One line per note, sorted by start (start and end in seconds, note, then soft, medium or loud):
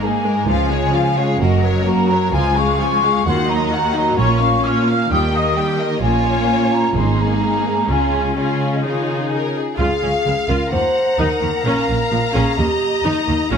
0.00 0.49 G#2 soft
0.00 1.24 G#3 soft
0.00 0.46 D#4 soft
0.00 0.26 D#4 soft
0.00 0.26 G#4 soft
0.00 0.48 G#5 medium
0.04 0.26 A#3 soft
0.26 0.49 G#3 soft
0.26 0.49 A#3 soft
0.26 0.49 A#4 soft
0.48 0.91 C#2 soft
0.48 1.41 C#3 soft
0.48 0.69 F3 soft
0.48 1.24 F4 soft
0.48 0.70 F4 soft
0.48 0.70 F5 soft
0.48 1.16 G#5 medium
0.72 0.94 G#3 soft
0.72 0.94 G#4 soft
0.72 0.95 C#5 soft
0.94 1.17 F3 soft
0.94 1.18 F4 soft
0.94 1.17 F5 soft
1.17 1.40 G#3 soft
1.17 1.41 G#4 soft
1.17 1.40 C#5 soft
1.17 1.40 F5 medium
1.40 1.83 F#1 soft
1.40 2.33 F#2 soft
1.40 2.32 F#3 soft
1.40 1.62 A#3 soft
1.40 2.31 F#4 soft
1.40 1.62 F#4 soft
1.40 1.61 A#4 soft
1.40 1.86 D#5 medium
1.62 1.86 F#3 soft
1.62 1.86 A#4 soft
1.62 1.86 C#5 soft
1.85 2.09 A#3 soft
1.85 2.09 F#4 soft
1.85 2.10 A#4 soft
1.85 2.32 A#5 medium
2.10 2.33 F#3 soft
2.10 2.33 A#4 soft
2.10 2.33 C#5 soft
2.32 3.26 C#2 soft
2.32 2.77 C#2 soft
2.32 2.55 F3 soft
2.32 3.27 G#3 soft
2.32 2.55 F4 soft
2.32 3.27 F4 soft
2.32 2.56 G#5 medium
2.32 2.55 G#5 soft
2.56 2.80 G#3 soft
2.56 2.80 G#4 soft
2.56 2.80 F5 soft
2.56 3.26 C#6 medium
2.80 3.04 F3 soft
2.80 3.03 F4 soft
2.80 3.03 G#5 soft
3.03 3.26 G#3 soft
3.03 3.26 G#4 soft
3.03 3.26 F5 soft
3.26 3.69 D#2 medium
3.26 4.17 D#2 soft
3.26 3.48 D#3 soft
3.26 6.05 A#3 medium
3.26 3.47 F#4 soft
3.26 4.17 F#4 soft
3.26 3.48 F#5 soft
3.26 3.49 C6 medium
3.49 3.72 F#3 soft
3.49 3.72 D#4 soft
3.49 3.72 D#5 soft
3.49 4.18 A#5 medium
3.72 3.95 D#3 soft
3.72 3.95 F#4 soft
3.72 3.95 F#5 soft
3.94 4.18 F#3 soft
3.94 4.18 D#4 soft
3.94 4.18 D#5 soft
4.17 4.61 A#1 soft
4.17 5.11 A#2 medium
4.17 4.40 C#4 soft
4.17 4.40 F4 soft
4.17 5.11 F4 soft
4.17 4.40 C#5 soft
4.17 4.63 C#6 medium
4.40 4.64 A#3 soft
4.40 4.64 C#4 soft
4.40 4.64 F5 soft
4.64 4.88 C#4 soft
4.64 4.88 F4 soft
4.64 4.88 C#5 soft
4.64 5.11 F6 medium
4.87 5.11 A#3 soft
4.87 5.11 C#4 soft
4.87 5.11 F5 soft
5.10 5.54 D#2 soft
5.10 6.01 D#3 soft
5.10 5.32 G3 soft
5.10 6.04 G4 soft
5.10 5.33 G4 soft
5.10 5.33 G5 soft
5.10 5.16 D#6 medium
5.34 5.57 A#3 soft
5.34 5.58 A#4 soft
5.34 5.58 D#5 soft
5.34 5.57 D#6 medium
5.56 5.80 G3 soft
5.56 5.80 G4 soft
5.56 5.81 G5 soft
5.80 6.01 A#3 soft
5.80 6.04 A#4 soft
5.80 6.04 D#5 soft
6.02 6.46 A#1 soft
6.02 6.92 A#2 soft
6.02 6.92 A#3 soft
6.02 6.93 C#4 soft
6.02 6.92 F4 soft
6.02 6.93 F4 soft
6.02 6.93 C#5 soft
6.02 6.68 G#5 medium
6.71 6.95 A#5 medium
6.95 7.39 G#1 soft
6.95 7.62 G#2 soft
6.95 7.88 G#2 soft
6.95 7.72 G#3 soft
6.95 7.88 A#3 soft
6.95 7.72 D#4 soft
6.95 7.89 D#4 soft
6.95 7.90 G#4 soft
6.95 7.20 C6 medium
7.20 7.90 A#5 medium
7.89 8.34 C#2 soft
7.89 9.59 C#3 soft
7.89 8.35 G#3 soft
7.89 8.36 C#4 soft
7.89 8.35 F4 soft
7.89 8.36 F4 soft
7.89 8.37 G#4 soft
7.89 8.36 G#5 medium
8.36 8.83 G#3 soft
8.36 8.84 C#4 soft
8.36 8.83 F4 soft
8.36 8.84 F4 soft
8.36 8.83 G#4 soft
8.36 8.72 C#5 soft
8.73 8.78 D#5 soft
8.84 9.56 D#3 soft
8.84 9.59 D#4 soft
8.84 9.54 F4 soft
8.84 9.27 F4 soft
8.84 9.58 G#4 soft
8.84 9.54 C#5 soft
9.33 9.55 A#4 soft
9.58 9.80 G#4 soft
9.78 9.87 C#2 soft
9.78 9.87 C#3 soft
9.78 10.01 F4 medium
9.78 10.50 G#4 medium
9.78 10.68 F5 soft
9.78 10.69 F5 soft
10.02 10.11 C#2 soft
10.02 10.11 C#3 soft
10.02 10.10 C#4 soft
10.26 10.34 C#2 soft
10.26 10.34 C#3 soft
10.26 10.34 G#3 soft
10.49 10.57 C#2 soft
10.49 10.57 C#3 soft
10.49 10.71 F4 soft
10.49 10.72 A#4 medium
10.72 10.81 D#2 soft
10.72 10.80 D#3 soft
10.72 10.80 A#3 soft
10.72 11.18 C5 medium
10.72 11.64 F#5 soft
10.72 13.58 A#5 soft
11.19 11.27 D#2 soft
11.19 11.27 D#3 soft
11.19 11.40 D#4 soft
11.19 11.65 A#4 medium
11.41 11.51 D#2 soft
11.41 11.49 D#3 soft
11.41 11.50 A#3 soft
11.65 11.74 A#1 soft
11.65 11.74 A#2 soft
11.65 11.87 C#4 soft
11.65 12.36 A#4 medium
11.65 12.57 F5 soft
11.89 11.97 A#1 soft
11.89 11.97 A#2 soft
11.89 11.97 A#3 soft
12.11 12.20 A#1 soft
12.11 12.20 A#2 soft
12.11 12.19 F3 soft
12.34 12.43 A#1 soft
12.34 12.44 A#2 soft
12.34 12.56 C#4 medium
12.34 12.58 G#4 medium
12.58 12.66 D#2 soft
12.58 12.67 D#3 soft
12.58 12.66 A#3 soft
12.58 13.04 G4 medium
12.58 13.52 D#5 soft
13.04 13.12 D#2 soft
13.04 13.12 D#3 soft
13.04 13.26 D#4 soft
13.04 13.53 D#4 medium
13.28 13.36 D#2 soft
13.28 13.36 D#3 soft
13.28 13.36 A#3 soft
13.51 13.58 A#1 soft
13.51 13.58 A#2 medium
13.51 13.58 C#4 soft
13.51 13.58 F4 medium
13.51 13.58 F5 soft